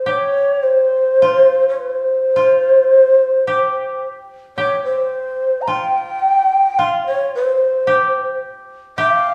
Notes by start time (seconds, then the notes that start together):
Already playing: F4
0.06 G4 C#5
0.63 C5
1.22 F4
1.69 C#5
1.80 C5
2.36 F4
3.47 G4
4.57 G4 C#5
4.84 C5
5.62 A#5
5.67 F4 G5
6.79 F4 F5
7.07 C#5
7.35 C5
7.87 G4
8.98 G4 E5
9.11 F5